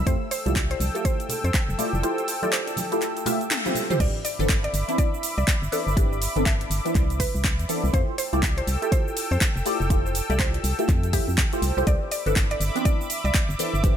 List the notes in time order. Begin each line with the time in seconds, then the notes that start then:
Already playing: E6
0.06 F2 A3 E4 F4 G4 A4 C5 G5, kick, closed hi-hat, cabasa
0.31 C5, open hi-hat, cabasa
0.46 C2 A3 E4 F4 G4 D5, closed hi-hat, high conga, cabasa
0.56 kick, clap, closed hi-hat, cabasa
0.71 C5, closed hi-hat
0.80 C2, open hi-hat, high conga, low conga, cabasa
0.94 A3 E4 F4 G4 A4, closed hi-hat, cabasa
1.05 C5, kick, closed hi-hat, cabasa
1.20 closed hi-hat, cabasa
1.29 open hi-hat, high bongo, low conga, cabasa
1.44 F2 C5, closed hi-hat, cabasa
1.54 kick, clap, closed hi-hat, cabasa
1.69 F1, high conga, cabasa
1.78 A3 E4 F4 G4 D5, open hi-hat, low conga, cabasa
1.93 F1, high conga, cabasa
2.03 A3 E4 F4 G4 C5, closed hi-hat, cabasa
2.18 closed hi-hat, cabasa
2.28 open hi-hat, cabasa
2.42 A3 E4 F4 G4 D5, closed hi-hat, high conga, cabasa
2.53 C5, clap, closed hi-hat, cabasa
2.67 closed hi-hat, high bongo, cabasa
2.76 open hi-hat, high conga, low conga, cabasa
2.92 A3 E4 F4 G4 A4, closed hi-hat, cabasa
3.02 clap, closed hi-hat, cabasa
3.17 closed hi-hat, cabasa
3.26 A3 E4 F4 G4 E5, open hi-hat, low conga, cabasa
3.41 closed hi-hat, cabasa
3.51 clap, closed hi-hat, high tom, high bongo, cabasa
3.65 A3 E4 F4 G4 C5, closed hi-hat, high tom, high conga, cabasa
3.75 open hi-hat, low conga, cabasa
3.90 A3 E4 F4 G4 C5, closed hi-hat, mid tom, high conga, cabasa
4.00 C2 E3 C4 D4 D5 E5 B5 D6, kick, closed hi-hat, crash, cabasa
4.25 D5, open hi-hat, cabasa
4.39 G1 E3 B3 C4 D4 A4, closed hi-hat, cabasa
4.49 kick, clap, closed hi-hat, cabasa
4.64 D5, closed hi-hat
4.74 G1, open hi-hat, cabasa
4.88 E3 B3 C4 D4 E4, closed hi-hat, cabasa
4.98 D5, kick, closed hi-hat, cabasa
5.14 cabasa
5.23 open hi-hat, cabasa
5.38 C2 D5, cabasa
5.48 kick, clap, closed hi-hat, cabasa
5.62 G1, cabasa
5.72 E3 B3 C4 D4 A4, open hi-hat, cabasa
5.87 G1, cabasa
5.96 E3 B3 C4 D4 G4, kick, closed hi-hat, cabasa
6.13 cabasa
6.22 open hi-hat, cabasa
6.36 G1 E3 B3 C4 D4 A4, closed hi-hat, cabasa
6.46 E5, kick, clap, closed hi-hat, cabasa
6.61 closed hi-hat
6.70 G1, open hi-hat, cabasa
6.85 E3 B3 C4 D4 E4, closed hi-hat, cabasa
6.95 C2, kick, clap, closed hi-hat, cabasa
7.10 closed hi-hat, cabasa
7.20 B4, kick, open hi-hat, cabasa
7.35 C2, cabasa
7.44 kick, clap, closed hi-hat, cabasa
7.59 E2, closed hi-hat, cabasa
7.69 E3 B3 C4 D4 A4, open hi-hat, cabasa
7.84 C2, cabasa
7.93 F2 A3 E4 F4 G4 A4 C5 G5 E6, kick, closed hi-hat, cabasa
8.18 C5, open hi-hat, cabasa
8.33 C2 A3 E4 F4 G4 D5, closed hi-hat, cabasa
8.43 kick, clap, closed hi-hat, cabasa
8.58 C5, closed hi-hat
8.67 C2, open hi-hat, cabasa
8.82 A3 E4 F4 G4 A4, closed hi-hat, cabasa
8.92 C5, kick, closed hi-hat, cabasa
9.08 cabasa
9.17 open hi-hat, cabasa
9.31 F2 C5, cabasa
9.41 kick, clap, closed hi-hat, cabasa
9.56 F1, cabasa
9.65 A3 E4 F4 G4 D5, open hi-hat, cabasa
9.80 F1, cabasa
9.90 A3 E4 F4 G4 C5, kick, closed hi-hat, cabasa
10.06 cabasa
10.15 open hi-hat, cabasa
10.29 C2 A3 E4 F4 G4 D5, closed hi-hat, cabasa
10.39 C5, kick, clap, closed hi-hat, cabasa
10.54 closed hi-hat
10.64 C2, open hi-hat, cabasa
10.79 A3 E4 F4 G4 A4, closed hi-hat, cabasa
10.89 F2, kick, clap, closed hi-hat, cabasa
11.03 closed hi-hat, cabasa
11.13 A3 E4 F4 G4 E5, kick, open hi-hat, cabasa
11.28 F2, cabasa
11.38 kick, clap, closed hi-hat, cabasa
11.52 A3 E4 F4 G4 C5, closed hi-hat, cabasa
11.62 C2, open hi-hat, cabasa
11.77 C2 A3 E4 F4 G4 C5, cabasa
11.87 C2 E3 B3 C4 D4 D5 E5 B5 D6, kick, closed hi-hat, cabasa
12.11 D5, open hi-hat, cabasa
12.26 G1 E3 B3 C4 D4 A4, closed hi-hat, cabasa
12.36 kick, clap, closed hi-hat, cabasa
12.51 D5, closed hi-hat
12.60 G1, open hi-hat, cabasa
12.75 E3 B3 C4 D4 E4, closed hi-hat, cabasa
12.85 D5, kick, closed hi-hat, cabasa
13.01 cabasa
13.10 open hi-hat, cabasa
13.25 C2 D5, cabasa
13.34 kick, clap, closed hi-hat, cabasa
13.49 G1, cabasa
13.59 E3 B3 C4 D4 A4, open hi-hat, cabasa
13.74 G1, cabasa
13.83 E3 B3 C4 D4 G4 A5, kick, closed hi-hat, cabasa